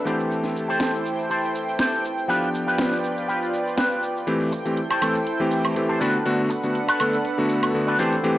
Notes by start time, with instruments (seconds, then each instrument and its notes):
Already playing: analog synth pad A4, clean electric guitar E5
0.05 electric grand piano E3 A3 C4 G4, analog synth pad E4 C5 G5, clean electric guitar G4 A4 C5, cabasa
0.20 cabasa
0.31 cabasa
0.44 snare
0.56 cabasa
0.68 clean electric guitar G4 A4 C5, cabasa
0.80 snare, cabasa
0.94 cabasa
1.06 cabasa
1.19 cabasa
1.30 clean electric guitar G4 A4 C5, cabasa
1.44 cabasa
1.55 cabasa
1.69 cabasa
1.79 clean electric guitar G4 A4 C5, snare, cabasa
1.93 cabasa
2.05 cabasa
2.18 cabasa
2.28 electric grand piano F3 B3 D4 G4, clean electric guitar F4 G4 B4, analog synth pad F4 B4 D5, cabasa
2.43 cabasa
2.55 cabasa
2.67 clean electric guitar F4 G4 B4, cabasa
2.78 snare, cabasa
2.92 snare, cabasa
3.04 cabasa
3.17 cabasa
3.28 clean electric guitar F4 G4 B4, cabasa
3.42 cabasa
3.54 cabasa
3.67 cabasa
3.77 clean electric guitar F4 G4 B4, snare, cabasa
3.92 cabasa
4.03 cabasa
4.17 cabasa
4.27 electric grand piano E3 A3 C4 G4, analog synth pad E4 A4 C5 G5, closed hi-hat, cabasa
4.41 open hi-hat
4.51 muted clean electric guitar stroke, open hi-hat, cabasa
4.65 electric grand piano E3 A3 C4 G4, muted clean electric guitar stroke, closed hi-hat, cabasa
4.77 closed hi-hat, cabasa
4.89 clean electric guitar G4 A4 C5, closed hi-hat, high woodblock
5.01 electric grand piano E3 A3 C4 A4, open hi-hat, cabasa, high woodblock
5.15 closed hi-hat, cabasa
5.27 closed hi-hat, cabasa
5.40 electric grand piano E3 A3 C4 G4
5.51 open hi-hat, cabasa
5.64 muted clean electric guitar stroke, closed hi-hat, cabasa, high woodblock
5.76 electric grand piano E3 A3 C4 G4, muted clean electric guitar stroke, closed hi-hat, cabasa
5.88 clean electric guitar G4 A4 C5, closed hi-hat
6.00 electric grand piano D3 A3 B3 F#4, clean electric guitar D4 A4 B4, analog synth pad D4 A4 B4 F#5, open hi-hat, cabasa
6.14 cabasa
6.25 electric grand piano D3 A3 B3 F#4, closed hi-hat, cabasa
6.39 closed hi-hat
6.50 muted clean electric guitar stroke, open hi-hat, cabasa
6.63 electric grand piano D3 A3 B3 F#4, muted clean electric guitar stroke, closed hi-hat, cabasa
6.75 closed hi-hat, cabasa
6.88 clean electric guitar D4 A4 B4, closed hi-hat, high woodblock
7.00 electric grand piano D3 A3 B3 A4, open hi-hat, cabasa, high woodblock
7.13 closed hi-hat, cabasa
7.25 closed hi-hat, cabasa
7.38 electric grand piano D3 A3 B3 F#4
7.50 open hi-hat, cabasa
7.62 muted clean electric guitar stroke, closed hi-hat, cabasa, high woodblock
7.74 electric grand piano D3 A3 B3 F#4, muted clean electric guitar stroke, open hi-hat, cabasa
7.87 clean electric guitar D4 A4 B4, closed hi-hat
7.98 electric grand piano E3 A3 C4 G4, analog synth pad E4 C5 G5, clean electric guitar G4 A4 C5, open hi-hat, cabasa
8.12 closed hi-hat, cabasa
8.23 electric grand piano E3 A3 C4 G4, closed hi-hat, cabasa